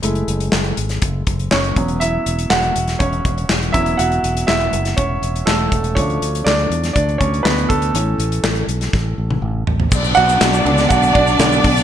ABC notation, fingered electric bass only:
X:1
M:4/4
L:1/8
Q:1/4=121
K:A
V:1 name="Fingered electric bass" clef=bass
F,,, F,,, F,,, G,,, F,,, F,,, F,,, E,,,- | E,,, E,,, E,,, E,,, E,,, E,,, E,,, E,,, | E,,, E,,, E,,, F,,, E,,, E,,, E,,, E,,, | D,, D,, D,, E,, D,, D,, D,, D,, |
A,,, A,,, A,,, B,,, A,,, A,,, A,,, A,,, | B,,, B,,, B,,, C,, B,,, B,,, B,,, B,,, |]